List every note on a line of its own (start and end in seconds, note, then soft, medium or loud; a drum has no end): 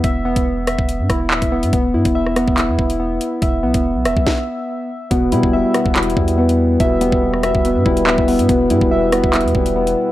0.00 0.35 E1 loud
0.00 0.24 B3 loud
0.00 0.46 E4 medium
0.00 0.66 E5 medium
0.00 kick loud
0.00 closed hi-hat medium
0.25 1.51 B3 loud
0.36 0.77 E1 loud
0.36 kick loud
0.36 closed hi-hat medium
0.67 1.29 E5 medium
0.67 cross-stick loud
0.67 closed hi-hat medium
0.79 1.01 E1 loud
0.79 kick loud
0.89 closed hi-hat medium
1.00 1.09 G2 loud
1.10 1.32 E1 loud
1.10 1.73 E4 medium
1.10 kick loud
1.10 cross-stick medium
1.10 closed hi-hat medium
1.31 1.41 D1 loud
1.31 1.73 E5 medium
1.31 clap loud
1.42 1.65 E1 loud
1.42 kick medium
1.42 closed hi-hat medium
1.52 1.72 B3 medium
1.63 1.73 G2 loud
1.63 closed hi-hat medium
1.73 1.96 E1 loud
1.73 2.35 B3 medium
1.73 kick loud
1.73 closed hi-hat medium
1.94 2.05 G2 loud
1.94 2.56 E4 medium
2.05 2.46 E1 loud
2.05 kick loud
2.05 closed hi-hat medium
2.15 3.41 E5 medium
2.27 cross-stick medium
2.36 2.98 B3 medium
2.36 cross-stick loud
2.36 closed hi-hat medium
2.48 2.70 E1 loud
2.48 kick loud
2.58 3.84 E4 medium
2.58 clap loud
2.58 closed hi-hat medium
2.69 2.78 E2 medium
2.79 3.19 E1 loud
2.79 kick loud
2.90 closed hi-hat medium
3.00 3.62 B3 medium
3.21 closed hi-hat medium
3.42 3.65 E1 loud
3.42 4.04 E5 medium
3.42 kick loud
3.42 closed hi-hat medium
3.63 3.74 B1 loud
3.63 4.90 B3 medium
3.74 3.97 E1 loud
3.74 kick loud
3.74 closed hi-hat medium
3.95 4.07 B1 loud
4.05 4.16 E1 loud
4.05 5.11 E5 medium
4.05 cross-stick loud
4.05 closed hi-hat medium
4.17 4.26 B1 loud
4.17 kick loud
4.27 kick loud
4.27 snare medium
5.11 5.34 E1 loud
5.11 5.52 B2 loud
5.11 10.12 G3 medium
5.11 5.73 B3 loud
5.11 10.12 B3 medium
5.11 10.12 E4 medium
5.11 10.12 B4 medium
5.11 kick loud
5.11 closed hi-hat medium
5.32 5.43 B2 loud
5.32 6.15 G3 medium
5.32 5.94 E4 medium
5.32 closed hi-hat medium
5.43 5.64 E1 loud
5.43 kick loud
5.53 5.73 B2 medium
5.53 6.79 E5 medium
5.74 5.94 B2 medium
5.74 6.37 B3 medium
5.74 cross-stick loud
5.74 closed hi-hat medium
5.86 6.15 E1 loud
5.86 kick loud
5.96 6.79 B2 medium
5.96 7.22 E4 medium
5.96 clap loud
5.96 closed hi-hat medium
6.03 closed hi-hat medium
6.10 closed hi-hat soft
6.17 6.78 E2 loud
6.17 6.99 G3 medium
6.17 kick loud
6.28 closed hi-hat medium
6.38 7.00 B3 loud
6.38 7.44 B3 loud
6.49 closed hi-hat medium
6.80 7.11 E1 loud
6.80 7.21 B2 medium
6.80 7.42 E5 medium
6.80 kick loud
6.80 closed hi-hat medium
7.01 7.84 G3 medium
7.01 8.27 B3 loud
7.01 closed hi-hat medium
7.12 7.53 E1 loud
7.12 kick loud
7.23 7.42 B2 medium
7.34 cross-stick medium
7.43 7.64 B2 medium
7.43 8.06 E5 medium
7.43 cross-stick loud
7.43 closed hi-hat medium
7.55 7.77 E1 loud
7.55 kick loud
7.65 8.47 B2 loud
7.65 closed hi-hat medium
7.76 7.85 G2 loud
7.86 8.08 E1 loud
7.86 8.49 G3 medium
7.86 8.49 E4 medium
7.86 kick loud
7.97 closed hi-hat medium
8.06 8.17 D1 loud
8.06 8.49 B3 medium
8.06 8.49 E5 medium
8.06 clap loud
8.18 8.41 E1 loud
8.18 kick medium
8.28 8.48 B3 medium
8.28 open hi-hat medium
8.39 8.49 G2 loud
8.39 closed hi-hat medium
8.49 8.72 E1 loud
8.49 8.90 B2 medium
8.49 9.11 B3 medium
8.49 kick loud
8.49 closed hi-hat medium
8.70 8.81 G2 loud
8.70 9.54 G3 medium
8.70 9.33 E4 medium
8.70 closed hi-hat medium
8.81 9.22 E1 loud
8.81 kick loud
8.91 9.11 B2 medium
8.91 10.12 E5 medium
9.12 9.32 B2 medium
9.12 9.75 B3 loud
9.12 cross-stick loud
9.12 closed hi-hat medium
9.24 9.46 E1 loud
9.24 kick loud
9.33 10.12 B2 medium
9.33 10.12 E4 medium
9.33 clap loud
9.33 closed hi-hat medium
9.41 closed hi-hat medium
9.45 9.54 E2 loud
9.45 closed hi-hat soft
9.55 9.95 E1 loud
9.55 10.12 G3 medium
9.55 kick loud
9.66 closed hi-hat medium
9.76 10.12 B3 medium
9.87 closed hi-hat medium